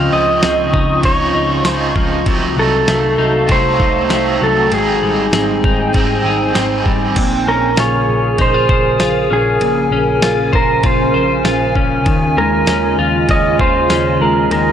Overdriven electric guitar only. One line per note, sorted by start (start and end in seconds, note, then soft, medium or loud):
0.00 1.01 C#3 medium
0.00 1.04 F3 medium
0.00 1.67 C4 medium
0.00 1.07 D#4 medium
1.03 1.63 C#3 medium
1.03 1.65 F3 medium
1.07 1.68 D#4 medium
1.64 2.26 C#3 medium
1.64 2.27 F3 medium
1.69 2.29 D#4 medium
2.26 2.57 C3 medium
2.26 2.58 F#3 medium
2.26 2.58 A3 medium
2.26 2.55 D#4 loud
2.56 3.50 A3 soft
2.56 3.52 D#4 medium
2.61 3.48 F#3 soft
3.47 4.08 C3 medium
3.47 4.10 F#3 medium
3.47 4.11 A3 medium
3.52 4.14 D#4 medium
4.09 4.71 C3 medium
4.09 4.72 F#3 medium
4.09 4.73 A3 medium
4.14 4.77 D#4 medium
4.69 5.93 G#2 medium
4.69 5.91 D#3 medium
4.75 5.96 C4 medium
4.75 5.96 D#4 medium
5.93 6.53 D#3 medium
5.93 6.57 C4 medium
5.97 6.57 D#4 medium
6.54 7.16 D#3 medium
6.54 7.17 G3 medium
6.54 7.68 C4 medium
6.59 7.18 D#4 medium